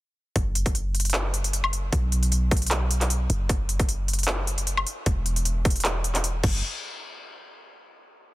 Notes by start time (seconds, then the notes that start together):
0.36 F#1, kick, closed hi-hat
0.55 closed hi-hat
0.66 kick, closed hi-hat
0.75 closed hi-hat
0.95 closed hi-hat
1.00 closed hi-hat
1.05 closed hi-hat
1.10 closed hi-hat
1.14 clap
1.34 closed hi-hat
1.44 closed hi-hat
1.53 closed hi-hat
1.64 high woodblock
1.73 closed hi-hat
1.93 B1, kick, closed hi-hat
2.12 closed hi-hat
2.23 closed hi-hat
2.32 closed hi-hat
2.51 kick, closed hi-hat
2.57 closed hi-hat
2.62 closed hi-hat
2.67 closed hi-hat
2.71 clap, closed hi-hat
2.91 closed hi-hat
3.01 clap, closed hi-hat
3.10 closed hi-hat
3.30 F#1, closed hi-hat
3.49 kick, closed hi-hat
3.69 closed hi-hat
3.79 kick, closed hi-hat
3.89 closed hi-hat
4.08 closed hi-hat
4.13 closed hi-hat
4.19 closed hi-hat
4.23 closed hi-hat
4.28 clap
4.47 closed hi-hat
4.58 closed hi-hat
4.67 closed hi-hat
4.77 high woodblock
4.87 closed hi-hat
5.06 E1, kick, closed hi-hat
5.26 closed hi-hat
5.36 closed hi-hat
5.45 closed hi-hat
5.65 kick, closed hi-hat
5.70 closed hi-hat
5.76 closed hi-hat
5.80 closed hi-hat
5.85 clap, closed hi-hat
6.04 closed hi-hat
6.15 clap, closed hi-hat
6.24 closed hi-hat
6.44 F#1, kick, crash